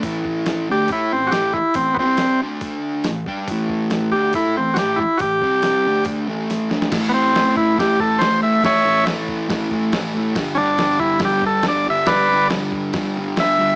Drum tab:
CC |----------------|----------------|----------------|----------------|
HH |o---o---o---o---|o---o---o---o---|o---o---o---o---|o---o---o---o---|
SD |----o-------o---|----o-------o---|----o-------o---|----o-------o-oo|
BD |o-o-----o-----o-|o-o-----o-----o-|o-o-----o-----o-|o-o-----o-------|

CC |x---x---x---x---|x---x---x---x---|x---x---x---x---|x---x---x---x---|
HH |----------------|----------------|----------------|----------------|
SD |o---o---o---o---|o---o---o---o---|o---o---o---o---|o---o---o---o---|
BD |o-----o-o-o-----|o-----o-o-o-----|o-----o-o-o-----|o-----o-o-------|